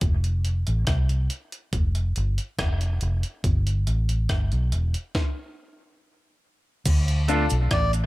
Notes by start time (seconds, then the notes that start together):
0.01 F1, kick, closed hi-hat
0.24 closed hi-hat
0.45 closed hi-hat
0.67 A1, closed hi-hat
0.87 C2, kick, cross-stick, closed hi-hat
1.09 closed hi-hat
1.30 closed hi-hat
1.52 closed hi-hat
1.73 F1, kick, closed hi-hat
1.95 closed hi-hat
2.16 G1, closed hi-hat
2.38 closed hi-hat
2.59 F1, kick, cross-stick, closed hi-hat
2.81 closed hi-hat
3.01 F1, closed hi-hat
3.23 closed hi-hat
3.44 G1, kick, closed hi-hat
3.67 closed hi-hat
3.87 A1, closed hi-hat
4.09 closed hi-hat
4.29 G1, kick, cross-stick, closed hi-hat
4.52 B1, closed hi-hat
4.72 E1, closed hi-hat
4.94 closed hi-hat
5.15 kick, snare
6.86 D2, kick, closed hi-hat, crash, cabasa
7.08 closed hi-hat
7.28 A3 D4 F4 A4, closed hi-hat, cabasa
7.50 B1, closed hi-hat, cabasa
7.71 A1 D5, kick, cross-stick, closed hi-hat
7.93 muted clean electric guitar stroke, closed hi-hat, cabasa